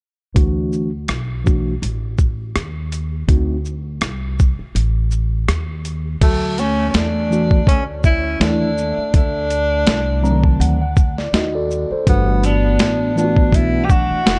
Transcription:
0.35 D2 E3 A3 D4 F#4, kick, closed hi-hat
0.72 shaker
1.08 B1, cross-stick, closed hi-hat
1.44 E3 A3 D4 F#4, kick, shaker
1.82 A1, closed hi-hat
2.18 kick, shaker
2.56 D#2, cross-stick, closed hi-hat
2.92 closed hi-hat, shaker
3.28 D2 A3 C4 D#4 F#4, kick, closed hi-hat
3.65 shaker
4.01 C2, cross-stick, closed hi-hat
4.39 kick, shaker
4.59 muted upright bass stroke
4.75 A1, closed hi-hat
5.11 shaker
5.48 D#2, cross-stick, closed hi-hat
5.85 closed hi-hat, shaker
6.21 D2 F#3 A3, kick, closed hi-hat, crash
6.58 A3 C#4, closed hi-hat, shaker
6.89 A3 C#4
6.94 E2 A3 D4, snare, closed hi-hat
7.30 E3 A3 D4 F#4, shaker
7.51 kick
7.67 D2 A3 C#4, kick, closed hi-hat
8.04 C#4 E4, kick, shaker
8.40 D#2 E3 A3 D4 E4, snare, closed hi-hat
8.78 shaker
8.98 muted upright bass stroke
9.14 D2 A3 D4, kick, closed hi-hat
9.50 closed hi-hat, shaker
9.87 C2, snare, closed hi-hat
10.22 F#3 A3 C4 D4 A#5, shaker
10.31 D#3
10.44 A5, kick
10.60 D2 F#5, closed hi-hat
10.82 F#5
10.96 kick, shaker
11.18 D5, snare
11.33 D#2 D#4 F#4 D#5, snare, closed hi-hat
11.55 F#4 A4 D5
11.71 shaker
11.91 A4 C5, muted upright bass stroke
12.06 G1 E3 G3 A3 B3 D4 F#4, kick, closed hi-hat
12.43 B3 D4, closed hi-hat, shaker
12.79 A1, snare, closed hi-hat
13.15 E3 A3 B3 D4 F4, shaker
13.24 F#4
13.36 kick
13.52 B1 B3 E4, kick, closed hi-hat
13.84 E4 G4
13.89 D4 F#4, kick, shaker
14.11 muted upright bass stroke
14.26 F1, snare, closed hi-hat

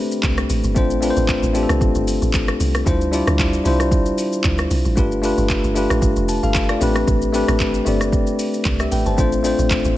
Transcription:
Already playing: A3 C4 D4 G4 B4 C5
0.12 shaker
0.23 C2, kick, clap, shaker
0.37 cross-stick, shaker
0.50 A1, open hi-hat, shaker
0.64 G1, shaker
0.75 A1 A3 C4 D4 F4 C5, kick, shaker
0.91 shaker
1.01 A3 C4 D4 F4 B4, open hi-hat, shaker
1.10 C5
1.17 A1, shaker
1.28 kick, clap, shaker
1.43 A1, shaker
1.53 A3 C4 D4 F4 G4, open hi-hat, shaker
1.63 A4
1.69 C2, cross-stick, shaker
1.81 A1, kick, shaker
1.95 G1, shaker
2.08 open hi-hat, shaker
2.22 A1, shaker
2.34 kick, clap, shaker
2.48 cross-stick, shaker
2.60 C2, open hi-hat, shaker
2.74 cross-stick, shaker
2.85 D2 G3 D4 E4 F4 C5, kick, shaker
3.01 shaker
3.11 G3 D4 E4 F4 D5, open hi-hat, shaker
3.27 D2, cross-stick, shaker
3.39 kick, clap, shaker
3.53 shaker
3.64 C2 G3 D4 E4 F4 C5, open hi-hat, shaker
3.80 cross-stick, shaker
3.91 kick, shaker
4.06 shaker
4.18 open hi-hat, shaker
4.33 shaker
4.44 D2, kick, clap, shaker
4.58 cross-stick, shaker
4.71 C2, open hi-hat, shaker
4.85 A1, shaker
4.96 G1 A3 D4 F4 G4 B4, kick, shaker
5.12 shaker
5.22 A3 D4 F4 G4 B4, open hi-hat, shaker
5.38 G1, shaker
5.49 kick, clap, shaker
5.64 G1, shaker
5.75 A3 D4 F4 G4 B4, open hi-hat, shaker
5.90 A1, cross-stick, shaker
6.02 G1, kick, shaker
6.16 F1, shaker
6.29 A5, open hi-hat, shaker
6.43 G1 A4 F5, shaker
6.55 kick, clap, shaker
6.69 F4 D5, cross-stick, shaker
6.80 A1 A3 C4 D4 G4 B4, open hi-hat, shaker
6.95 cross-stick, shaker
7.07 A1, kick, shaker
7.22 shaker
7.33 A3 C4 D4 G4 B4, open hi-hat, shaker
7.48 A1, cross-stick, shaker
7.60 kick, clap, shaker
7.74 shaker
7.85 G1 A3 C4 D4 G4 D5, open hi-hat, shaker
8.01 cross-stick, shaker
8.12 kick, shaker
8.27 shaker
8.39 open hi-hat, shaker
8.54 shaker
8.65 C2, kick, clap, shaker
8.79 G4 E5, cross-stick, shaker
8.92 A1 B4 G5, open hi-hat, shaker
9.06 G1 C5 A5, shaker
9.17 A1 A3 C4 D4 F4 C5, kick, shaker
9.32 shaker
9.43 A3 C4 D4 F4 C5, open hi-hat, shaker
9.59 A1, shaker
9.70 kick, clap, shaker
9.85 A1, shaker

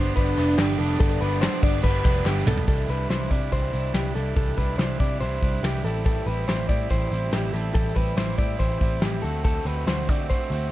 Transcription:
Already playing: G1 B3 D4 C5
0.00 G3
0.16 G1 D3 G3 B3 D4 B4, kick, ride
0.37 F1 G3 B3 D4, clap, ride
0.58 G1 G2 D3 G3 B3 D4 G4, snare, clap, ride
0.78 F1 G3 B3 D4 A4, ride
1.00 G1 G2 D3 G3 B3 D4 A4, kick, ride
1.21 G1 G3 B3 D4 B4, ride
1.41 G2 D3 G3 B3 D4 C5, snare, clap, ride
1.63 G1 G3 B3 D4 D5, kick, ride
1.83 G1 D3 G3 B3 D4 B4, kick, ride
2.05 F1 G3 B3 D4, kick, clap, ride
2.25 G1 G2 D3 G3 B3 D4 G4, snare, clap
2.46 B1 G3 B3 D4 A4, mid tom
2.57 floor tom
2.68 C2 C3 E3 G3 D4 E4 A4, kick, closed hi-hat
2.89 C2 G3 D4 E4 B4, closed hi-hat
3.10 C2 E3 G3 D4 E4 C5, snare, closed hi-hat
3.30 C3 G3 D4 E4 D5, kick, closed hi-hat
3.52 C2 C3 E3 G3 D4 E4 C5, kick, closed hi-hat
3.73 C2 G3 D4 E4, closed hi-hat
3.94 C2 E3 G3 D4 E4 G4, snare, closed hi-hat
4.15 C2 G3 D4 E4 A4, closed hi-hat
4.36 C2 C3 E3 G3 D4 E4 A4, kick, closed hi-hat
4.57 C2 G3 D4 E4 B4, kick, closed hi-hat
4.78 C2 E3 G3 D4 E4 C5, snare, closed hi-hat
4.99 C3 G3 D4 E4 D5, kick, closed hi-hat
5.21 C2 C3 E3 G3 D4 E4 C5, closed hi-hat
5.42 C2 G3 D4 E4, kick, closed hi-hat
5.63 C2 E3 G3 D4 E4 G4, snare, closed hi-hat
5.84 A1 G3 C4 E4 A4, closed hi-hat
6.05 A2 E3 G3 C4 E4 A4, kick, closed hi-hat
6.26 A1 G3 C4 E4 B4, closed hi-hat
6.47 A1 E3 G3 C4 E4 C5, snare, closed hi-hat
6.68 A2 G3 C4 E4 D5, kick, closed hi-hat
6.90 A1 A2 E3 G3 C4 E4 C5, kick, closed hi-hat
7.11 A1 G3 C4 E4, closed hi-hat
7.32 A1 E3 G3 C4 E4 G4, snare, closed hi-hat
7.53 A1 G3 C4 E4 A4, closed hi-hat
7.74 A1 A2 E3 G3 C4 E4 A4, kick, closed hi-hat
7.95 A1 G3 C4 E4 B4, kick, closed hi-hat
8.17 A1 E3 G3 C4 E4 C5, snare, closed hi-hat
8.38 A2 G3 C4 E4 D5, kick, closed hi-hat
8.59 A1 A2 E3 G3 C4 E4 C5, kick, closed hi-hat
8.81 A1 G3 C4 E4, kick, closed hi-hat
9.02 A1 E3 G3 C4 E4 G4, snare, closed hi-hat
9.22 D2 A3 C4 F#4 A4, closed hi-hat
9.45 D3 A3 C4 F#4 A4, kick, closed hi-hat
9.65 D2 A3 C4 F#4 B4, closed hi-hat
9.87 D2 D3 A3 C4 F#4 C5, snare, closed hi-hat
10.09 D3 A3 C4 F#4 D5, kick, closed hi-hat
10.30 D2 D3 A3 C4 F#4 C5, kick, closed hi-hat
10.50 D2 A3 C4 F#4, closed hi-hat

